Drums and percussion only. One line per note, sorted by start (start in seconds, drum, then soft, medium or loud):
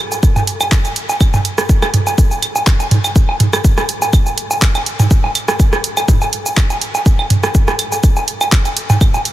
0.12 cabasa soft
0.12 low woodblock soft
0.23 kick loud
0.23 cabasa medium
0.36 mid tom medium
0.36 cabasa soft
0.36 low woodblock medium
0.47 closed hi-hat medium
0.60 cabasa soft
0.60 claves medium
0.60 low woodblock medium
0.72 kick loud
0.72 clap loud
0.72 cabasa medium
0.85 closed hi-hat soft
0.85 cabasa soft
0.85 low woodblock soft
0.96 closed hi-hat medium
1.09 cabasa soft
1.09 low woodblock medium
1.20 kick loud
1.20 cabasa medium
1.20 claves medium
1.34 mid tom medium
1.34 cabasa soft
1.34 low woodblock medium
1.45 closed hi-hat medium
1.58 cross-stick medium
1.58 cabasa soft
1.58 low woodblock soft
1.69 kick loud
1.69 cabasa medium
1.82 cross-stick medium
1.82 cabasa soft
1.82 claves medium
1.82 low woodblock medium
1.94 closed hi-hat medium
1.94 mid tom medium
2.07 cabasa soft
2.07 low woodblock medium
2.18 kick loud
2.18 cabasa medium
2.31 cabasa soft
2.31 low woodblock soft
2.42 closed hi-hat medium
2.42 claves medium
2.56 cabasa soft
2.56 low woodblock medium
2.67 kick loud
2.67 clap loud
2.67 cabasa medium
2.80 closed hi-hat soft
2.80 cabasa soft
2.80 low woodblock medium
2.91 closed hi-hat medium
2.91 mid tom loud
3.04 cabasa soft
3.04 claves medium
3.04 low woodblock soft
3.16 kick loud
3.16 cabasa medium
3.29 low woodblock medium
3.40 closed hi-hat medium
3.40 mid tom medium
3.53 cross-stick medium
3.53 cabasa soft
3.53 claves medium
3.53 low woodblock soft
3.64 kick loud
3.64 cabasa medium
3.78 cross-stick medium
3.78 cabasa soft
3.78 low woodblock medium
3.89 closed hi-hat medium
4.02 cabasa soft
4.02 low woodblock medium
4.13 kick loud
4.13 cabasa medium
4.13 claves medium
4.26 cabasa soft
4.26 low woodblock soft
4.38 closed hi-hat medium
4.51 cabasa soft
4.51 low woodblock medium
4.62 kick loud
4.62 clap loud
4.62 cabasa medium
4.75 closed hi-hat soft
4.75 cabasa soft
4.75 claves medium
4.75 low woodblock medium
4.86 closed hi-hat medium
4.99 mid tom medium
4.99 cabasa soft
4.99 low woodblock soft
5.11 kick loud
5.11 cabasa medium
5.24 low woodblock medium
5.35 closed hi-hat medium
5.35 claves medium
5.48 cross-stick medium
5.48 cabasa soft
5.48 low woodblock medium
5.60 kick loud
5.60 cabasa medium
5.73 cross-stick medium
5.73 cabasa soft
5.73 low woodblock soft
5.84 closed hi-hat loud
5.97 cabasa soft
5.97 claves medium
5.97 low woodblock medium
6.08 kick loud
6.08 mid tom loud
6.08 cabasa medium
6.22 cabasa soft
6.22 low woodblock medium
6.33 closed hi-hat loud
6.46 cabasa soft
6.46 low woodblock soft
6.57 kick loud
6.57 clap loud
6.57 cabasa medium
6.57 claves medium
6.70 closed hi-hat soft
6.70 cabasa soft
6.70 low woodblock medium
6.81 closed hi-hat loud
6.95 cabasa soft
6.95 low woodblock medium
7.06 kick loud
7.06 cabasa soft
7.19 claves medium
7.19 low woodblock soft
7.30 closed hi-hat loud
7.30 mid tom medium
7.43 cross-stick medium
7.43 cabasa soft
7.43 low woodblock medium
7.55 kick loud
7.55 cabasa medium
7.68 cross-stick medium
7.68 cabasa soft
7.68 low woodblock medium
7.79 closed hi-hat loud
7.79 claves medium
7.92 cabasa soft
7.92 low woodblock soft
8.03 kick loud
8.03 cabasa medium
8.16 cabasa soft
8.16 low woodblock medium
8.28 closed hi-hat loud
8.41 cabasa soft
8.41 claves medium
8.41 low woodblock medium
8.52 kick loud
8.52 clap loud
8.52 cabasa medium
8.65 closed hi-hat soft
8.65 cabasa soft
8.65 low woodblock soft
8.77 closed hi-hat loud
8.90 mid tom medium
8.90 cabasa soft
8.90 low woodblock medium
9.01 kick loud
9.01 cabasa soft
9.01 claves medium
9.14 cabasa soft
9.14 low woodblock medium
9.25 closed hi-hat medium